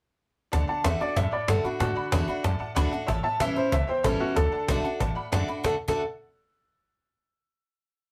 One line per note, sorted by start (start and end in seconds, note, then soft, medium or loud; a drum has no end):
0.52 0.68 D2 medium
0.52 0.83 D3 medium
0.52 0.62 D5 loud
0.52 0.62 F#5 loud
0.52 0.62 A5 loud
0.52 cajon bass loud
0.52 cajon slap soft
0.67 0.78 D5 loud
0.67 0.78 F#5 medium
0.67 0.79 A5 loud
0.67 0.84 A5 medium
0.67 muted upright bass stroke medium
0.67 cajon slap soft
0.84 1.00 E2 medium
0.84 1.00 D3 medium
0.84 1.00 A3 medium
0.84 1.01 D4 medium
0.84 1.00 F#4 medium
0.84 0.94 D5 medium
0.84 1.00 E5 medium
0.84 0.94 F#5 medium
0.84 0.94 A5 medium
0.84 cajon bass medium
0.84 cajon slap loud
0.99 1.17 D4 soft
0.99 1.16 F#4 medium
0.99 1.09 D5 medium
0.99 1.17 D5 medium
0.99 1.10 F#5 medium
0.99 1.10 A5 medium
0.99 muted upright bass stroke medium
0.99 cajon slap soft
1.09 cajon slap soft
1.15 1.32 F#2 medium
1.15 1.77 A2 medium
1.15 1.26 D5 medium
1.15 1.32 E5 medium
1.15 1.26 F#5 medium
1.15 1.26 A5 medium
1.15 cajon bass loud
1.15 cajon slap soft
1.31 1.41 D5 medium
1.31 1.48 D5 loud
1.31 1.42 F#5 medium
1.31 1.42 B5 medium
1.31 muted upright bass stroke medium
1.31 cajon slap soft
1.47 1.64 G2 medium
1.47 1.64 D3 medium
1.47 1.64 A3 medium
1.47 1.64 D4 medium
1.47 1.63 F#4 medium
1.47 1.65 A4 medium
1.47 1.58 D5 medium
1.47 1.58 F#5 medium
1.47 1.58 A5 loud
1.47 cajon bass medium
1.47 cajon slap loud
1.63 1.81 D4 medium
1.63 1.79 F#4 medium
1.63 1.80 F#4 medium
1.63 1.73 D5 medium
1.63 1.74 F#5 medium
1.63 1.74 B5 medium
1.63 muted upright bass stroke medium
1.63 cajon slap soft
1.72 cajon slap soft
1.79 1.96 A2 medium
1.79 2.11 D3 medium
1.79 2.43 F#4 loud
1.79 1.89 D5 loud
1.79 1.90 F#5 medium
1.79 1.90 A5 loud
1.79 cajon bass loud
1.79 cajon slap soft
1.95 2.05 D5 loud
1.95 2.06 F#5 loud
1.95 2.06 B5 loud
1.95 muted upright bass stroke medium
1.95 cajon slap soft
2.11 2.28 E2 loud
2.11 2.28 D3 loud
2.11 2.28 A3 medium
2.11 2.28 D4 loud
2.11 2.27 F#4 loud
2.11 2.21 D5 medium
2.11 2.22 F#5 medium
2.11 2.22 B5 medium
2.11 cajon bass medium
2.11 cajon slap loud
2.27 2.44 D4 medium
2.27 2.43 F#4 medium
2.27 2.37 D5 medium
2.27 2.38 F#5 medium
2.27 2.38 B5 medium
2.27 muted upright bass stroke medium
2.43 2.60 F#2 medium
2.43 3.05 A2 medium
2.43 2.53 D5 medium
2.43 2.54 F#5 medium
2.43 2.54 A5 loud
2.43 cajon bass loud
2.43 cajon slap soft
2.59 2.69 D5 medium
2.59 2.70 F#5 medium
2.59 2.70 A5 loud
2.59 muted upright bass stroke medium
2.59 cajon slap soft
2.75 2.92 D2 medium
2.75 2.92 D3 medium
2.75 2.92 A3 medium
2.75 2.92 D4 loud
2.75 2.91 F#4 medium
2.75 2.85 D5 loud
2.75 2.86 F#5 loud
2.75 2.86 B5 loud
2.75 cajon bass medium
2.75 cajon slap loud
2.91 3.08 D4 medium
2.91 3.08 F#4 medium
2.91 3.01 D5 medium
2.91 3.02 F#5 medium
2.91 3.02 A5 medium
2.91 muted upright bass stroke medium
2.91 cajon slap soft
3.07 3.24 A1 medium
3.07 3.69 A2 medium
3.07 3.17 C#5 loud
3.07 3.17 E5 loud
3.07 3.18 A5 loud
3.07 cajon bass loud
3.07 cajon slap soft
3.23 3.33 C#5 loud
3.23 3.34 E5 medium
3.23 3.40 A5 loud
3.23 3.34 A5 loud
3.23 cajon slap soft
3.40 3.55 B1 loud
3.40 3.56 E3 loud
3.40 3.56 G3 medium
3.40 3.56 C#4 loud
3.40 3.55 E4 loud
3.40 3.50 C#5 medium
3.40 3.50 E5 medium
3.40 3.56 E5 loud
3.40 3.50 A5 medium
3.40 cajon bass medium
3.40 cajon slap loud
3.56 3.72 C#4 soft
3.56 3.72 E4 medium
3.56 3.72 C5 loud
3.56 3.66 C#5 medium
3.56 3.66 E5 medium
3.56 3.66 A5 medium
3.56 muted upright bass stroke soft
3.56 cajon slap soft
3.72 3.88 C#2 medium
3.72 4.33 E2 medium
3.72 3.82 C#5 medium
3.72 3.82 E5 medium
3.72 3.88 E5 loud
3.72 3.82 A5 medium
3.72 cajon bass loud
3.72 cajon slap soft
3.87 4.04 C5 loud
3.87 3.97 C#5 medium
3.87 3.98 E5 medium
3.87 3.98 G5 medium
3.87 muted upright bass stroke medium
3.87 cajon slap soft
4.03 4.20 A1 medium
4.03 4.35 E3 medium
4.03 4.35 G3 medium
4.03 4.35 C#4 loud
4.03 4.36 E4 medium
4.03 4.20 A4 medium
4.03 4.13 C#5 medium
4.03 4.14 E5 medium
4.03 4.14 B5 loud
4.03 cajon bass medium
4.03 cajon slap loud
4.19 4.36 F#4 loud
4.19 4.29 C#5 medium
4.19 4.30 E5 medium
4.19 4.30 A5 medium
4.19 muted upright bass stroke medium
4.19 cajon slap soft
4.29 cajon slap soft
4.35 4.52 D2 medium
4.35 4.68 D3 medium
4.35 4.99 A4 loud
4.35 4.45 D5 loud
4.35 4.46 F#5 medium
4.35 4.46 A5 loud
4.35 cajon bass loud
4.35 cajon slap soft
4.52 4.62 D5 loud
4.52 4.62 F#5 medium
4.52 4.62 A5 loud
4.52 cajon slap soft
4.67 4.84 B1 medium
4.67 4.84 D3 loud
4.67 4.84 A3 loud
4.67 4.85 D4 loud
4.67 4.84 F#4 loud
4.67 4.77 D5 medium
4.67 4.78 F#5 medium
4.67 4.78 A5 medium
4.67 cajon bass medium
4.67 cajon slap loud
4.83 5.01 D4 soft
4.83 5.00 F#4 medium
4.83 4.93 D5 medium
4.83 4.94 F#5 medium
4.83 4.94 A5 medium
4.83 muted upright bass stroke medium
4.83 cajon slap soft
4.93 cajon slap soft
5.00 5.16 A1 medium
5.00 5.62 A2 medium
5.00 5.10 D5 medium
5.00 5.10 F#5 medium
5.00 5.10 A5 loud
5.00 cajon bass loud
5.00 cajon slap soft
5.15 5.25 D5 medium
5.15 5.26 F#5 medium
5.15 5.26 B5 loud
5.15 muted upright bass stroke medium
5.15 cajon slap soft
5.32 5.48 F#2 medium
5.32 5.48 D3 medium
5.32 5.48 A3 medium
5.32 5.48 D4 loud
5.32 5.47 F#4 loud
5.32 5.42 D5 loud
5.32 5.42 F#5 loud
5.32 5.42 A5 loud
5.32 cajon bass medium
5.32 cajon slap loud
5.47 5.63 D4 soft
5.47 5.64 F#4 medium
5.47 5.57 D5 medium
5.47 5.58 F#5 medium
5.47 5.58 B5 medium
5.47 muted upright bass stroke medium
5.64 5.73 D2 medium
5.64 5.74 D3 medium
5.64 5.74 A3 medium
5.64 5.74 D4 medium
5.64 5.74 F#4 medium
5.64 5.74 A4 medium
5.64 5.73 D5 medium
5.64 5.73 F#5 medium
5.64 5.73 A5 medium
5.64 cajon bass loud
5.64 cajon slap medium
5.88 6.03 D2 medium
5.88 6.01 D3 medium
5.88 6.01 A3 loud
5.88 6.01 D4 medium
5.88 6.01 F#4 medium
5.88 6.04 A4 medium
5.88 6.03 D5 medium
5.88 6.03 F#5 medium
5.88 6.03 A5 medium
5.88 cajon bass loud